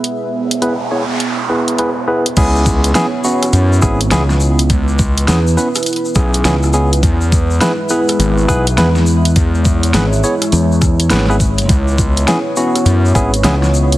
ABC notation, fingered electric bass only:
X:1
M:4/4
L:1/8
Q:"Swing 16ths" 1/4=103
K:C#m
V:1 name="Fingered electric bass" clef=bass
z8 | z4 z G,,, C,,2 | z2 E,, z3 C,,2 | z4 z B,,, E,,2 |
z2 G,,, z E,,2 G,,,2 | z4 z G,,, C,,2 |]